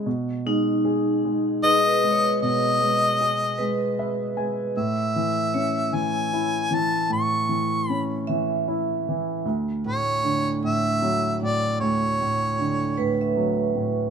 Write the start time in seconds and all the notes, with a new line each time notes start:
0.06 B2
0.46 G#3 D#4
0.85 G#4
1.25 G#3
1.63 G#4 B4 D#5
1.87 B4
2.04 G#3
2.12 C#5
2.42 B2 D#5
2.80 G#3
3.21 G#4
3.58 G#3 B4
3.99 B4 E5
4.37 G#3 G#5
4.77 A2 E5
5.16 E3
5.54 C#4 C#5
5.93 E3 G#5
6.33 E4
6.71 E3
6.75 A5
7.10 A2 C#6
7.49 E3
7.89 C#4 B5
8.27 E3 E5
8.68 E4
9.09 E3
9.46 D2
9.85 A2 C#5
10.24 D3
10.64 A2 E5
11.02 F#3
11.42 A2 D5
11.80 D2 C#5
12.21 A2
12.59 D3
12.98 A2 B4
13.21 E5
13.37 F#3
13.75 A2